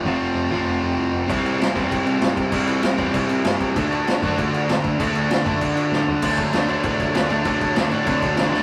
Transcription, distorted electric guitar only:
X:1
M:4/4
L:1/8
Q:1/4=195
K:Dmix
V:1 name="Distorted electric guitar"
[=F,A,C=F]3 [F,A,CF]4- [F,A,CF] | [C,E,G,CE]3 [C,E,G,CE]4- [C,E,G,CE] | [C,E,G,CE]3 [C,E,G,CE]4- [C,E,G,CE] | [D,A,DF]3 [D,A,DF]4- [D,A,DF] |
[D,A,DF]3 [D,A,DF]4- [D,A,DF] | [D,F,A,D]2 [D,F,A,D] [D,F,A,D] [D,F,A,D]2 [D,F,A,D] [D,F,A,D] | [D,F,A,D]2 [D,F,A,D] [D,F,A,D] [D,F,A,D]2 [D,F,A,D] [D,F,A,D] |]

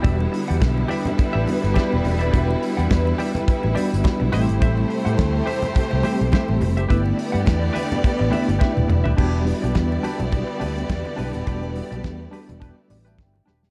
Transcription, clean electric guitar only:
X:1
M:4/4
L:1/16
Q:"Swing 16ths" 1/4=105
K:G
V:1 name="Clean electric guitar"
[Gde] z2 [Gdf] z2 [Gde] z2 [Gde] z2 [Gde] z2 [Gde] | [Gde] z2 [Gdf] z2 [Gde] z3 [Gde] z3 [Gce] z | [Gce] z2 [Gcf] z2 [Gce] z3 [Gce] z [Gce] z2 [Gce] | [GBe] z2 [GBf] z2 [GBe] z3 [GBe] z [GBe] z2 [GBe] |
[DGB]2 z [DGd] z2 [DGB] z3 [DGB] z3 [DGB] z | [DGB]2 z [DGd] z2 [DGB] z [DGB] z2 [DGB] z2 [DGB] z |]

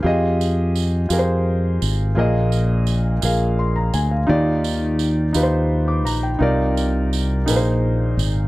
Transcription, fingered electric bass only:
X:1
M:6/8
L:1/8
Q:3/8=57
K:Eb
V:1 name="Fingered electric bass" clef=bass
F,,3 F,,2 A,,, | B,,,3 B,,,2 D,, | E,,3 E,,2 B,,, | C,,3 B,,,2 A,,, |]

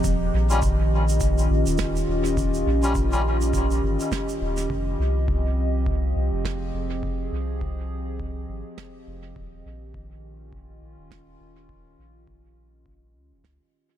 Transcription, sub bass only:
X:1
M:4/4
L:1/16
Q:"Swing 16ths" 1/4=103
K:Ebmix
V:1 name="Sub bass" clef=bass
E,,,2 B,,,8 B,,, E,,,3 E,,,2- | E,,,2 B,,,8 G,,, z3 E,,,2 | F,,,2 C,,8 C,, F,,,3 F,,,2- | F,,,2 C,,8 A,,, z3 F,,,2 |
E,,,2 B,,,8 B,,, E,,,3 E,,,2- | E,,,2 B,,,8 D,, E,,, D,, z3 |]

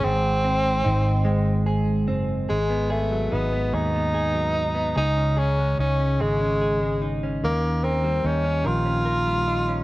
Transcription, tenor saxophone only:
X:1
M:6/8
L:1/8
Q:3/8=49
K:G#phr
V:1 name="Tenor saxophone"
^B,4 z2 | G, A, B, D3 | D C C G,2 z | ^A, ^B, C ^E3 |]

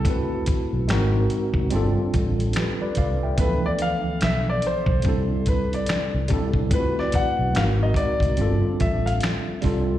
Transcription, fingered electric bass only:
X:1
M:4/4
L:1/16
Q:"Swing 16ths" 1/4=72
K:Ddor
V:1 name="Fingered electric bass" clef=bass
D,,2 z B,,, ^G,,,2 z ^B,,, =G,,, z A,,,2 z2 C,,2 | D,,3 z B,,,2 z B,,, C,,4 z C,, z C,, | D,,2 z B,,, ^G,,,2 z ^B,,, =G,,, z A,,,2 z2 C,,2 |]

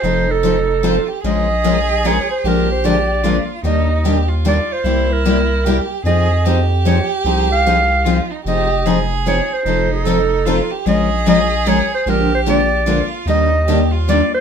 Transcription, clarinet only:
X:1
M:3/4
L:1/8
Q:"Swing" 1/4=150
K:Fm
V:1 name="Clarinet"
c =A4 z | e4 d c | B c =d3 z | e3 z =d c- |
c B4 z | e3 z d z | z f4 z | e3 z d c- |
c =A4 z | e2 e2 d c | B c =d3 z | e3 z =d c |]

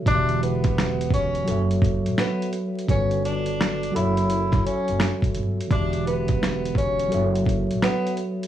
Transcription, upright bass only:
X:1
M:4/4
L:1/16
Q:"Swing 16ths" 1/4=85
K:Edor
V:1 name="Upright bass" clef=bass
E,,,8 F,,,3 A,,, z4 | G,,,6 F,,,4 z F,,, z2 G,,, z | E,,,8 F,,,3 A,,, z4 |]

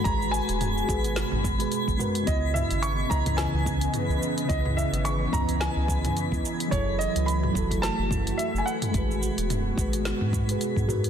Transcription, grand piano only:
X:1
M:4/4
L:1/16
Q:"Swing 16ths" 1/4=108
K:Dbmix
V:1 name="Grand piano"
b2 a6 z8 | e2 _f2 d'2 b2 a4 z4 | e2 _f2 d'2 b2 a4 z4 | d2 e2 c'4 =a4 _f3/2 _a/2 g2- |
g12 z4 |]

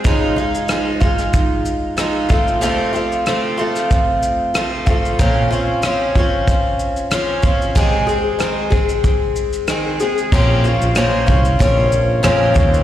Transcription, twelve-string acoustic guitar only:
X:1
M:4/4
L:1/8
Q:"Swing 16ths" 1/4=94
K:Bbm
V:1 name="Twelve-string acoustic guitar"
[D,F,A,EF] [A,EF] [F,A,EF] [A,EF]3 [F,A,EF] [F,=A,CF] | [F,,C,F,=A,CF] [F,A,CF] [F,A,CF] [F,A,CF]3 [F,A,CF] [F,A,CF] | [B,,F,CDF] [CDF] [F,CDF] [CDF]3 [F,CDF] [CDF] | [C,E,A,CA] [A,CA] [E,A,CA] [A,CA]3 [E,A,CA] [A,CA] |
[B,,F,CDF] [CDF] [B,,F,CDF] [CDF] [F,CDF]2 [B,,F,CDF] [CDF] |]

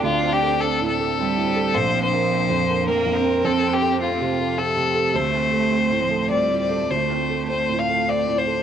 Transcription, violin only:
X:1
M:3/4
L:1/8
Q:1/4=105
K:Dphr
V:1 name="Violin"
F G A A3 | c c3 B2 | A G F2 A2 | c4 d d |
c2 c f d c |]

